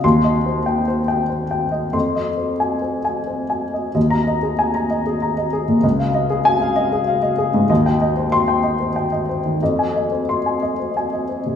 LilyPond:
<<
  \new Staff \with { instrumentName = "Upright piano" } { \time 3/4 \key f \minor \tempo 4 = 94 << { c'''8 r2 r8 | c'''8 r2 r8 | r16 bes''8 r2 r16 | r4 aes''8 r4. |
r4 c'''8 r4. | r4 c'''8 r4. | } \\ { \tuplet 3/2 { r8 ees''8 c''8 g''8 c''8 g''8 c''8 g''8 ees''8 } | \tuplet 3/2 { r8 ees''8 c''8 aes''8 c''8 aes''8 c''8 aes''8 ees''8 } | ees''8 ees''16 aes'16 aes''16 bes''16 ees''16 aes'16 bes''16 ees''16 aes'16 bes,16 | ees''16 f''16 ees''16 aes'8 f''16 ees''16 aes'16 f''16 ees''16 aes'16 aes,16 |
ees''16 g''16 ees''16 c''8 g''16 ees''16 c''16 g''16 ees''16 c''16 ees16 | ees''16 aes''16 ees''16 c''8 aes''16 ees''16 c''16 aes''16 ees''16 c''16 c16 | } >> }
  \new Staff \with { instrumentName = "Upright piano" } { \clef bass \time 3/4 \key f \minor ees,2. | f,2. | ees,2. | des,2. |
ees,2. | f,2. | }
>>